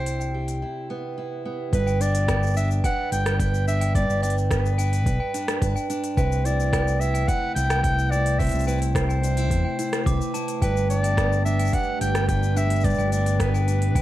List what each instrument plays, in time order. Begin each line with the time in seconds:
Already playing: fingered electric bass C2, steel-string acoustic guitar C3 E4 G4, ambient pad A3 D4 D5, clarinet C5
0.06 open hi-hat, shaker
0.20 glockenspiel G5, shaker
0.34 steel-string acoustic guitar G4
0.48 open hi-hat, shaker
0.62 steel-string acoustic guitar E4
0.90 steel-string acoustic guitar B3
1.18 steel-string acoustic guitar E4
1.45 steel-string acoustic guitar B3
1.73 fingered electric bass G1, steel-string acoustic guitar G2, clarinet B4, kick, open hi-hat, shaker
1.87 glockenspiel G5, shaker
2.01 steel-string acoustic guitar D4, clarinet D5, open hi-hat, shaker
2.15 open hi-hat, shaker
2.28 steel-string acoustic guitar B3, glockenspiel G5, kick, cross-stick, open hi-hat, shaker
2.43 shaker
2.46 shaker
2.50 shaker
2.54 steel-string acoustic guitar D4, clarinet E5, shaker
2.57 shaker
2.64 shaker
2.68 shaker
2.71 shaker
2.84 steel-string acoustic guitar B4, clarinet F#5, glockenspiel G5, kick, open hi-hat, shaker
3.12 fingered electric bass G1, steel-string acoustic guitar D4, clarinet G5, open hi-hat, shaker
3.26 glockenspiel G5, cross-stick, open hi-hat, shaker
3.40 steel-string acoustic guitar B4, clarinet G5, kick, open hi-hat, shaker
3.54 shaker
3.68 steel-string acoustic guitar D4, clarinet E5, shaker
3.81 glockenspiel G5, open hi-hat, shaker
3.95 steel-string acoustic guitar G2, clarinet D5, kick, open hi-hat, shaker
4.09 fingered electric bass G1, shaker
4.22 steel-string acoustic guitar D4, clarinet D5, glockenspiel G5, open hi-hat, shaker
4.30 open hi-hat
4.38 shaker
4.51 steel-string acoustic guitar B3, clarinet B4, kick, cross-stick, open hi-hat, shaker
4.66 shaker
4.78 steel-string acoustic guitar D4, glockenspiel G5, open hi-hat, shaker
4.93 open hi-hat, shaker
5.06 fingered electric bass B1, steel-string acoustic guitar B4, kick, open hi-hat, shaker
5.20 glockenspiel G5
5.34 steel-string acoustic guitar D4, open hi-hat, shaker
5.48 cross-stick, open hi-hat, shaker
5.62 fingered electric bass G1, steel-string acoustic guitar B4, kick, open hi-hat, shaker
5.76 glockenspiel G5, shaker
5.90 steel-string acoustic guitar D4, open hi-hat, shaker
6.04 open hi-hat, shaker
6.17 fingered electric bass C2, steel-string acoustic guitar C3, ambient pad A3, clarinet B4, glockenspiel G5, kick, open hi-hat, shaker
6.32 shaker
6.45 steel-string acoustic guitar E4, clarinet D5, open hi-hat, shaker
6.60 shaker
6.73 steel-string acoustic guitar B3, glockenspiel G5, kick, cross-stick, open hi-hat, shaker
6.88 shaker
7.00 steel-string acoustic guitar E4, clarinet E5, shaker
7.14 glockenspiel G5, open hi-hat, shaker
7.28 steel-string acoustic guitar B4, clarinet F#5, kick, open hi-hat, shaker
7.55 fingered electric bass C2, steel-string acoustic guitar E4, clarinet G5, open hi-hat, shaker
7.70 glockenspiel G5, cross-stick, open hi-hat, shaker
7.83 clarinet G5, kick, open hi-hat, shaker
7.99 shaker
8.11 steel-string acoustic guitar E4, clarinet D5, glockenspiel G5, shaker
8.26 open hi-hat, shaker
8.39 steel-string acoustic guitar C3, clarinet E5, kick, open hi-hat, shaker
8.42 open hi-hat
8.45 open hi-hat
8.47 open hi-hat
8.49 open hi-hat
8.51 fingered electric bass C2, open hi-hat, shaker
8.59 open hi-hat, shaker
8.64 clarinet B4, glockenspiel G5, shaker
8.68 steel-string acoustic guitar E4, shaker
8.73 shaker
8.78 shaker
8.82 open hi-hat, shaker
8.95 clarinet C5, kick, cross-stick, open hi-hat, shaker
9.09 glockenspiel G5, shaker
9.23 steel-string acoustic guitar D4, open hi-hat, shaker
9.37 steel-string acoustic guitar E4, open hi-hat, shaker
9.51 fingered electric bass E2, kick, open hi-hat, shaker
9.65 glockenspiel G5
9.79 steel-string acoustic guitar E4, open hi-hat, shaker
9.93 cross-stick, open hi-hat, shaker
10.06 fingered electric bass C2, steel-string acoustic guitar B4, glockenspiel D6, kick, open hi-hat, shaker
10.21 shaker
10.34 steel-string acoustic guitar E4, glockenspiel A5, open hi-hat, shaker
10.48 open hi-hat, shaker
10.62 fingered electric bass G1, steel-string acoustic guitar G2, clarinet B4, glockenspiel G5, kick, open hi-hat, shaker
10.77 shaker
10.83 ambient pad D4
10.90 steel-string acoustic guitar D4, clarinet D5, open hi-hat, shaker
11.03 glockenspiel G5, open hi-hat, shaker
11.17 steel-string acoustic guitar B3, kick, cross-stick, open hi-hat, shaker
11.32 ambient pad G4, shaker
11.40 ambient pad B4
11.45 steel-string acoustic guitar D4, clarinet E5, shaker
11.59 glockenspiel G5, open hi-hat, shaker
11.65 shaker
11.67 shaker
11.69 kick, shaker
11.73 steel-string acoustic guitar B4, clarinet F#5, open hi-hat
11.79 shaker
11.83 shaker
12.01 fingered electric bass G1, steel-string acoustic guitar D4, clarinet G5, glockenspiel G5, open hi-hat, shaker
12.15 cross-stick, open hi-hat, shaker
12.29 steel-string acoustic guitar B4, clarinet G5, kick, open hi-hat, shaker
12.43 shaker
12.57 steel-string acoustic guitar D4, clarinet E5, glockenspiel G5, shaker
12.70 open hi-hat, shaker
12.76 shaker
12.80 steel-string acoustic guitar G2, kick, shaker
12.85 clarinet D5, open hi-hat, shaker
12.90 shaker
12.94 shaker
12.98 fingered electric bass G1, glockenspiel G5, shaker
13.12 steel-string acoustic guitar D4, clarinet D5, open hi-hat, shaker
13.26 open hi-hat, shaker
13.40 steel-string acoustic guitar B3, clarinet B4, kick, cross-stick, open hi-hat, shaker
13.54 glockenspiel G5, shaker
13.67 steel-string acoustic guitar D4, open hi-hat, shaker
13.82 open hi-hat
13.95 fingered electric bass B1, steel-string acoustic guitar B4, glockenspiel G5, kick, open hi-hat, shaker